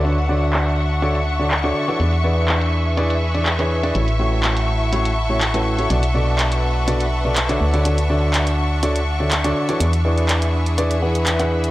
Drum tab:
HH |xx--xx--xx--xx-x|xx--xx--xx-xxx-x|xx--xx--xx--xx-x|xx--xx--xx--xx-x|
CP |----x-------x---|----x-------xx--|----x-------x---|----x-------xx--|

HH |xx--xx--xx--xx-x|xx-xxx-xxx-xxx-x|
CP |----x-------x---|----x-------xx--|